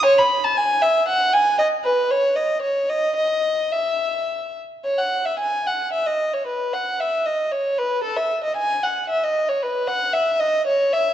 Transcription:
X:1
M:3/4
L:1/16
Q:1/4=114
K:E
V:1 name="Violin"
c b2 a g2 e2 f2 g2 | d2 B2 c2 d2 c2 d2 | d4 e6 z2 | c f2 e g2 f2 e d2 c |
B2 f2 e2 d2 c2 B2 | A e2 d g2 f2 e d2 c | B2 f2 e2 d2 c2 e2 |]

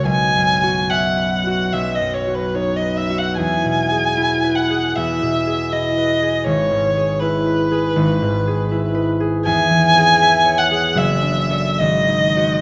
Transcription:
X:1
M:4/4
L:1/16
Q:1/4=76
K:E
V:1 name="Violin"
g4 f4 e d c B c d e f | g6 f2 e4 d4 | c4 B8- B2 z2 | [K:C#m] g6 f2 e4 d4 |]
V:2 name="Harp"
(3[B,,,EF]2 F,,2 F2 (3e2 B2 F2 (3B,,,2 F,,2 F2 (3D2 B2 F2 | (3E,,2 B,,2 G2 (3E2 B2 G2 (3E,,2 B,,2 G2 (3E2 B2 G2 | (3G,,,2 G,,2 G2 (3E2 B2 G2 (3G,,,2 G,,2 G2 (3E2 B2 G2 | [K:C#m] (3E,,2 E,2 G2 (3e2 c2 G2 (3F,,,2 =D2 [A=d]2 (3G,,,2 ^D2 [F^B]2 |]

